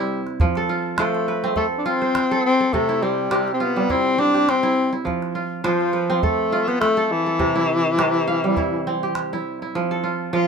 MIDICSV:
0, 0, Header, 1, 4, 480
1, 0, Start_track
1, 0, Tempo, 583658
1, 337, Time_signature, 4, 2, 24, 8
1, 8614, End_track
2, 0, Start_track
2, 0, Title_t, "Kora"
2, 0, Program_c, 0, 46
2, 0, Note_on_c, 0, 48, 72
2, 0, Note_on_c, 0, 55, 77
2, 0, Note_on_c, 0, 60, 75
2, 0, Note_on_c, 0, 64, 70
2, 0, Note_on_c, 0, 67, 52
2, 335, Note_on_c, 0, 53, 68
2, 378, Note_off_c, 0, 48, 0
2, 378, Note_off_c, 0, 55, 0
2, 384, Note_off_c, 0, 64, 0
2, 468, Note_on_c, 0, 69, 63
2, 570, Note_on_c, 0, 65, 61
2, 803, Note_off_c, 0, 53, 0
2, 812, Note_on_c, 0, 72, 57
2, 813, Note_on_c, 0, 53, 68
2, 907, Note_off_c, 0, 67, 0
2, 1052, Note_on_c, 0, 71, 64
2, 1102, Note_off_c, 0, 60, 0
2, 1181, Note_on_c, 0, 60, 73
2, 1290, Note_off_c, 0, 69, 0
2, 1293, Note_on_c, 0, 69, 70
2, 1523, Note_off_c, 0, 65, 0
2, 1526, Note_on_c, 0, 65, 80
2, 1655, Note_off_c, 0, 72, 0
2, 1658, Note_on_c, 0, 72, 60
2, 1708, Note_off_c, 0, 71, 0
2, 1899, Note_off_c, 0, 69, 0
2, 1902, Note_on_c, 0, 69, 75
2, 2137, Note_off_c, 0, 69, 0
2, 2141, Note_on_c, 0, 69, 52
2, 2253, Note_on_c, 0, 48, 70
2, 2293, Note_off_c, 0, 53, 0
2, 2376, Note_on_c, 0, 64, 56
2, 2425, Note_off_c, 0, 65, 0
2, 2484, Note_off_c, 0, 60, 0
2, 2488, Note_on_c, 0, 60, 59
2, 2635, Note_off_c, 0, 72, 0
2, 2715, Note_off_c, 0, 48, 0
2, 2724, Note_on_c, 0, 48, 70
2, 2726, Note_on_c, 0, 67, 68
2, 2962, Note_on_c, 0, 65, 65
2, 3011, Note_off_c, 0, 64, 0
2, 3095, Note_on_c, 0, 55, 67
2, 3208, Note_on_c, 0, 64, 66
2, 3224, Note_off_c, 0, 69, 0
2, 3436, Note_off_c, 0, 60, 0
2, 3440, Note_on_c, 0, 60, 77
2, 3568, Note_off_c, 0, 67, 0
2, 3571, Note_on_c, 0, 67, 65
2, 3805, Note_off_c, 0, 64, 0
2, 3808, Note_on_c, 0, 64, 72
2, 3858, Note_off_c, 0, 65, 0
2, 4047, Note_off_c, 0, 64, 0
2, 4051, Note_on_c, 0, 64, 58
2, 4153, Note_on_c, 0, 53, 64
2, 4211, Note_off_c, 0, 48, 0
2, 4211, Note_off_c, 0, 55, 0
2, 4400, Note_on_c, 0, 65, 55
2, 4449, Note_off_c, 0, 64, 0
2, 4630, Note_off_c, 0, 53, 0
2, 4639, Note_on_c, 0, 53, 80
2, 4639, Note_on_c, 0, 72, 68
2, 4733, Note_off_c, 0, 67, 0
2, 4876, Note_on_c, 0, 71, 60
2, 4926, Note_off_c, 0, 60, 0
2, 5014, Note_on_c, 0, 60, 72
2, 5126, Note_on_c, 0, 69, 67
2, 5362, Note_off_c, 0, 65, 0
2, 5365, Note_on_c, 0, 65, 79
2, 5487, Note_off_c, 0, 72, 0
2, 5490, Note_on_c, 0, 72, 60
2, 5540, Note_off_c, 0, 71, 0
2, 5728, Note_off_c, 0, 69, 0
2, 5732, Note_on_c, 0, 69, 70
2, 5970, Note_off_c, 0, 69, 0
2, 5973, Note_on_c, 0, 69, 49
2, 6080, Note_on_c, 0, 48, 70
2, 6134, Note_off_c, 0, 53, 0
2, 6214, Note_on_c, 0, 64, 65
2, 6263, Note_off_c, 0, 65, 0
2, 6467, Note_off_c, 0, 72, 0
2, 6494, Note_off_c, 0, 60, 0
2, 6555, Note_off_c, 0, 48, 0
2, 6565, Note_on_c, 0, 48, 70
2, 6565, Note_on_c, 0, 67, 64
2, 6805, Note_on_c, 0, 77, 72
2, 6855, Note_off_c, 0, 64, 0
2, 6941, Note_on_c, 0, 55, 64
2, 7051, Note_on_c, 0, 64, 65
2, 7057, Note_off_c, 0, 69, 0
2, 7294, Note_on_c, 0, 60, 69
2, 7423, Note_off_c, 0, 67, 0
2, 7427, Note_on_c, 0, 67, 55
2, 7627, Note_off_c, 0, 77, 0
2, 7669, Note_off_c, 0, 64, 0
2, 7672, Note_on_c, 0, 64, 64
2, 7908, Note_off_c, 0, 64, 0
2, 7911, Note_on_c, 0, 64, 50
2, 8020, Note_on_c, 0, 53, 82
2, 8060, Note_off_c, 0, 55, 0
2, 8061, Note_off_c, 0, 48, 0
2, 8150, Note_on_c, 0, 69, 66
2, 8253, Note_on_c, 0, 65, 63
2, 8303, Note_off_c, 0, 64, 0
2, 8485, Note_off_c, 0, 53, 0
2, 8495, Note_on_c, 0, 53, 83
2, 8588, Note_off_c, 0, 67, 0
2, 8614, Note_off_c, 0, 53, 0
2, 8614, Note_off_c, 0, 60, 0
2, 8614, Note_off_c, 0, 65, 0
2, 8614, Note_off_c, 0, 69, 0
2, 8614, End_track
3, 0, Start_track
3, 0, Title_t, "Alto saxophone"
3, 0, Program_c, 1, 65
3, 0, Note_on_c, 1, 55, 65
3, 205, Note_off_c, 1, 55, 0
3, 811, Note_on_c, 1, 57, 74
3, 1259, Note_off_c, 1, 57, 0
3, 1283, Note_on_c, 1, 57, 72
3, 1370, Note_off_c, 1, 57, 0
3, 1463, Note_on_c, 1, 62, 58
3, 1529, Note_on_c, 1, 60, 88
3, 1541, Note_off_c, 1, 62, 0
3, 2010, Note_off_c, 1, 60, 0
3, 2020, Note_on_c, 1, 60, 93
3, 2246, Note_on_c, 1, 57, 87
3, 2258, Note_off_c, 1, 60, 0
3, 2490, Note_on_c, 1, 55, 83
3, 2502, Note_off_c, 1, 57, 0
3, 2905, Note_off_c, 1, 55, 0
3, 2910, Note_on_c, 1, 60, 60
3, 2974, Note_on_c, 1, 59, 87
3, 2987, Note_off_c, 1, 60, 0
3, 3216, Note_on_c, 1, 60, 95
3, 3228, Note_off_c, 1, 59, 0
3, 3449, Note_on_c, 1, 62, 105
3, 3462, Note_off_c, 1, 60, 0
3, 3701, Note_on_c, 1, 60, 88
3, 3713, Note_off_c, 1, 62, 0
3, 4066, Note_off_c, 1, 60, 0
3, 4653, Note_on_c, 1, 53, 76
3, 5123, Note_on_c, 1, 57, 92
3, 5135, Note_off_c, 1, 53, 0
3, 5496, Note_on_c, 1, 59, 86
3, 5508, Note_off_c, 1, 57, 0
3, 5591, Note_off_c, 1, 59, 0
3, 5596, Note_on_c, 1, 57, 96
3, 5848, Note_on_c, 1, 52, 93
3, 5860, Note_off_c, 1, 57, 0
3, 7776, Note_off_c, 1, 52, 0
3, 8511, Note_on_c, 1, 65, 87
3, 8614, Note_off_c, 1, 65, 0
3, 8614, End_track
4, 0, Start_track
4, 0, Title_t, "Calabash"
4, 219, Note_on_c, 9, 38, 20
4, 301, Note_off_c, 9, 38, 0
4, 327, Note_on_c, 9, 36, 70
4, 410, Note_off_c, 9, 36, 0
4, 456, Note_on_c, 9, 38, 22
4, 538, Note_off_c, 9, 38, 0
4, 805, Note_on_c, 9, 38, 67
4, 887, Note_off_c, 9, 38, 0
4, 943, Note_on_c, 9, 38, 20
4, 1025, Note_off_c, 9, 38, 0
4, 1282, Note_on_c, 9, 36, 55
4, 1364, Note_off_c, 9, 36, 0
4, 1768, Note_on_c, 9, 38, 58
4, 1850, Note_off_c, 9, 38, 0
4, 2247, Note_on_c, 9, 36, 52
4, 2329, Note_off_c, 9, 36, 0
4, 2376, Note_on_c, 9, 38, 19
4, 2458, Note_off_c, 9, 38, 0
4, 2723, Note_on_c, 9, 38, 54
4, 2806, Note_off_c, 9, 38, 0
4, 2859, Note_on_c, 9, 38, 20
4, 2941, Note_off_c, 9, 38, 0
4, 3203, Note_on_c, 9, 36, 49
4, 3286, Note_off_c, 9, 36, 0
4, 3690, Note_on_c, 9, 38, 55
4, 3772, Note_off_c, 9, 38, 0
4, 4168, Note_on_c, 9, 36, 48
4, 4250, Note_off_c, 9, 36, 0
4, 4296, Note_on_c, 9, 38, 19
4, 4379, Note_off_c, 9, 38, 0
4, 4642, Note_on_c, 9, 38, 56
4, 4725, Note_off_c, 9, 38, 0
4, 4775, Note_on_c, 9, 38, 18
4, 4857, Note_off_c, 9, 38, 0
4, 5122, Note_on_c, 9, 36, 50
4, 5205, Note_off_c, 9, 36, 0
4, 5605, Note_on_c, 9, 38, 59
4, 5687, Note_off_c, 9, 38, 0
4, 6081, Note_on_c, 9, 36, 60
4, 6163, Note_off_c, 9, 36, 0
4, 6569, Note_on_c, 9, 38, 62
4, 6651, Note_off_c, 9, 38, 0
4, 6694, Note_on_c, 9, 38, 20
4, 6777, Note_off_c, 9, 38, 0
4, 7045, Note_on_c, 9, 36, 60
4, 7127, Note_off_c, 9, 36, 0
4, 7527, Note_on_c, 9, 38, 60
4, 7609, Note_off_c, 9, 38, 0
4, 8614, End_track
0, 0, End_of_file